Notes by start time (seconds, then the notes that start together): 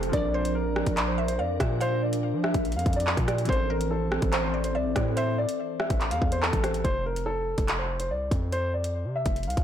Already playing: F1 F3 A4 C5
0.03 closed hi-hat
0.09 A#1 F3 D4 A#4 D5, kick, closed hi-hat
0.15 A#4 D5
0.34 C5
0.45 closed hi-hat
0.55 A#4
0.76 cross-stick
0.87 A#1, kick, closed hi-hat
0.97 D5, clap, closed hi-hat
1.08 C5
1.18 E5
1.28 C5, closed hi-hat
1.39 F2 D5 F5
1.60 A#2 E5, kick, cross-stick, closed hi-hat
1.81 C5 F5, closed hi-hat
2.03 D5
2.13 closed hi-hat
2.33 F3
2.43 E5, cross-stick
2.54 A#1, kick, closed hi-hat
2.65 closed hi-hat
2.72 F2, closed hi-hat
2.76 F5, closed hi-hat
2.86 F2, kick, closed hi-hat
2.93 D5, closed hi-hat
3.00 closed hi-hat
3.07 clap
3.17 A#2, kick, closed hi-hat
3.28 D5, cross-stick, closed hi-hat
3.38 closed hi-hat
3.45 A1 E3 C4 A4, kick, closed hi-hat
3.49 A4 C5, closed hi-hat
3.70 A#4
3.81 closed hi-hat
3.91 A4
4.12 cross-stick
4.22 A1, kick, closed hi-hat
4.33 C5, clap, closed hi-hat
4.43 C5
4.54 D5
4.64 C5, closed hi-hat
4.75 C2 D5 E5
4.85 A1
4.96 A2 D5, kick, cross-stick, closed hi-hat
5.16 C5 E5, closed hi-hat
5.38 D5
5.49 closed hi-hat
5.80 E5, cross-stick
5.90 A1, kick, closed hi-hat
6.01 clap, closed hi-hat
6.11 E2 F5, closed hi-hat
6.22 E2, kick
6.32 C5, closed hi-hat
6.43 A4, clap
6.53 A1, kick, closed hi-hat
6.64 C5, cross-stick, closed hi-hat
6.74 closed hi-hat
6.84 F1 C5, kick, closed hi-hat
7.06 A#4
7.16 closed hi-hat
7.26 A4
7.58 F1, kick, closed hi-hat
7.68 clap, closed hi-hat
7.79 C5
8.00 C5, closed hi-hat
8.10 C2 D5
8.31 F2, kick, closed hi-hat
8.52 C5, closed hi-hat
8.74 D5
8.84 closed hi-hat
9.05 C3
9.16 E5
9.26 F1, kick, closed hi-hat
9.36 closed hi-hat
9.43 C2, closed hi-hat
9.47 F5, closed hi-hat
9.57 C2, kick, closed hi-hat